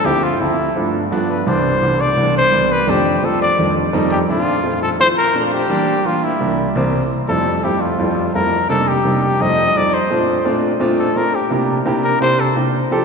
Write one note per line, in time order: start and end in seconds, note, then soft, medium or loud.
0.04 0.29 D2 medium
0.04 0.30 F3 medium
0.04 0.30 A3 medium
0.04 0.30 C4 medium
0.04 0.30 E4 medium
0.04 0.25 G4 medium
0.23 0.42 F4 medium
0.40 0.65 D2 medium
0.40 0.65 F3 medium
0.40 0.65 A3 medium
0.40 0.65 C4 medium
0.40 0.93 E4 medium
0.40 0.65 E4 medium
0.75 1.00 G2 medium
0.75 1.00 F3 medium
0.75 1.01 A3 medium
0.75 1.01 B3 medium
0.75 1.01 D4 medium
1.11 1.36 G2 medium
1.11 1.36 F3 medium
1.11 1.36 A3 medium
1.11 1.36 B3 medium
1.11 1.36 D4 medium
1.29 1.49 B4 medium
1.46 1.71 C2 medium
1.46 1.71 E3 medium
1.46 1.71 G3 medium
1.46 1.71 B3 medium
1.46 1.72 D4 medium
1.46 2.02 C5 medium
1.81 2.06 C2 medium
1.81 2.07 E3 medium
1.81 2.07 G3 medium
1.81 2.07 B3 medium
1.81 2.07 D4 medium
2.01 2.35 D5 medium
2.16 2.41 C2 medium
2.16 2.41 E3 medium
2.16 2.42 G3 medium
2.16 2.42 B3 medium
2.16 2.42 D4 medium
2.37 2.73 C5 loud
2.51 2.77 C2 medium
2.51 2.77 E3 medium
2.51 2.77 G3 medium
2.51 2.77 B3 medium
2.51 2.77 D4 medium
2.72 2.91 B4 medium
2.87 3.12 F2 medium
2.87 3.12 D#3 medium
2.87 3.12 G3 medium
2.87 3.12 A3 medium
2.87 3.13 C4 medium
2.87 3.13 D4 medium
2.87 3.26 G4 medium
3.22 3.47 F2 medium
3.22 3.47 D#3 medium
3.22 3.48 G3 medium
3.22 3.48 A3 medium
3.22 3.48 C4 medium
3.22 3.48 F4 medium
3.22 3.41 A4 medium
3.42 3.74 D5 medium
3.58 3.83 F2 medium
3.58 3.83 D#3 medium
3.58 3.83 G3 medium
3.58 3.83 A3 medium
3.58 3.83 C4 medium
3.58 3.83 D4 medium
3.92 4.18 F2 medium
3.92 4.18 D#3 medium
3.92 4.18 G3 medium
3.92 4.18 A3 medium
3.92 4.18 C4 medium
3.92 4.18 D#4 medium
4.11 4.19 G4 medium
4.28 4.53 A#2 medium
4.28 4.54 F3 medium
4.28 4.54 A3 medium
4.28 4.54 C4 medium
4.28 4.54 D4 medium
4.28 4.79 F4 medium
4.63 4.88 A#2 medium
4.63 4.88 F3 medium
4.63 4.88 A3 medium
4.63 4.89 C4 medium
4.63 4.89 F4 medium
4.82 4.90 A4 medium
4.99 5.24 A#2 medium
4.99 5.24 F3 medium
4.99 5.24 A3 medium
4.99 5.24 C4 medium
4.99 5.24 E4 medium
4.99 5.08 C5 loud
5.17 5.43 A#4 loud
5.34 5.59 A#2 medium
5.34 5.59 F3 medium
5.34 5.59 A3 medium
5.34 5.60 C4 medium
5.34 5.60 D4 medium
5.46 5.54 F4 medium
5.53 6.07 G4 loud
5.69 5.94 E3 medium
5.69 5.94 G3 medium
5.69 5.95 A#3 medium
5.69 5.95 D4 medium
6.05 6.30 E3 medium
6.05 6.30 G3 medium
6.05 6.30 A#3 medium
6.05 6.30 D4 medium
6.05 6.25 F4 medium
6.24 6.76 E4 medium
6.40 6.65 C2 medium
6.40 6.65 E3 medium
6.40 6.65 G3 medium
6.40 6.65 A#3 medium
6.40 6.66 D4 medium
6.75 7.00 C2 medium
6.75 7.00 E3 medium
6.75 7.00 G3 medium
6.75 7.01 A#3 medium
6.75 7.01 C4 medium
7.28 7.53 F2 medium
7.28 7.53 G3 medium
7.28 7.53 A3 medium
7.28 7.54 C4 medium
7.28 7.54 E4 medium
7.28 7.65 A4 medium
7.63 7.88 F2 medium
7.63 7.89 G3 medium
7.63 7.89 A3 medium
7.63 7.89 C4 medium
7.63 7.89 E4 medium
7.63 7.82 G4 medium
7.81 8.34 F4 medium
7.98 8.23 F2 medium
7.98 8.23 G3 medium
7.98 8.24 A3 medium
7.98 8.24 C4 medium
7.98 8.24 E4 medium
8.34 8.52 F2 medium
8.34 8.52 G3 medium
8.34 8.52 A3 medium
8.34 8.52 C4 medium
8.34 8.52 E4 medium
8.34 8.67 A#4 medium
8.69 8.94 C3 medium
8.69 8.94 G3 medium
8.69 8.94 A#3 medium
8.69 8.95 D4 medium
8.69 8.95 D#4 medium
8.69 8.90 A4 medium
8.88 9.43 G4 medium
9.04 9.22 C3 medium
9.04 9.22 G3 medium
9.04 9.23 A#3 medium
9.04 9.23 D4 medium
9.04 9.23 D#4 medium
9.40 9.65 F2 medium
9.40 9.65 G3 medium
9.40 9.65 A3 medium
9.40 9.65 C4 medium
9.40 9.65 D#4 medium
9.40 9.79 D#5 loud
9.75 9.93 F2 medium
9.75 9.93 G3 medium
9.75 9.93 A3 medium
9.75 9.93 C4 medium
9.75 9.94 D#4 medium
9.75 9.95 D5 medium
9.94 10.46 C5 medium
10.10 10.35 A#2 medium
10.10 10.35 A3 medium
10.10 10.35 C4 medium
10.10 10.35 D4 medium
10.10 10.36 F4 medium
10.45 10.70 A#2 medium
10.45 10.70 A3 medium
10.45 10.70 C4 medium
10.45 10.70 D4 medium
10.45 10.70 F4 medium
10.80 11.05 A#2 medium
10.80 11.05 A3 medium
10.80 11.05 C4 medium
10.80 11.05 D4 medium
10.80 11.06 F4 loud
10.99 11.18 A4 medium
11.16 11.33 A#2 medium
11.16 11.34 A3 medium
11.16 11.34 C4 medium
11.16 11.34 D4 medium
11.16 11.34 F4 medium
11.16 11.37 A#4 loud
11.35 11.52 G4 medium
11.51 11.75 C3 medium
11.51 11.75 A#3 medium
11.51 11.76 D4 medium
11.51 11.76 E4 medium
11.51 11.76 G4 medium
11.85 12.10 C3 medium
11.85 12.11 A#3 medium
11.85 12.11 D4 medium
11.85 12.11 E4 medium
11.85 12.11 G4 medium
12.04 12.20 A#4 medium
12.21 12.46 C3 medium
12.21 12.46 A#3 medium
12.21 12.46 D4 medium
12.21 12.46 E4 medium
12.21 12.46 G4 medium
12.21 12.41 C5 loud
12.40 12.57 A4 medium
12.56 12.74 C3 medium
12.56 12.74 A#3 medium
12.56 12.74 D4 medium
12.56 12.74 E4 medium
12.56 12.74 G4 medium
12.91 13.05 F3 medium
12.91 13.05 C4 medium
12.91 13.05 D4 medium
12.91 13.05 G4 medium
12.91 13.05 A4 loud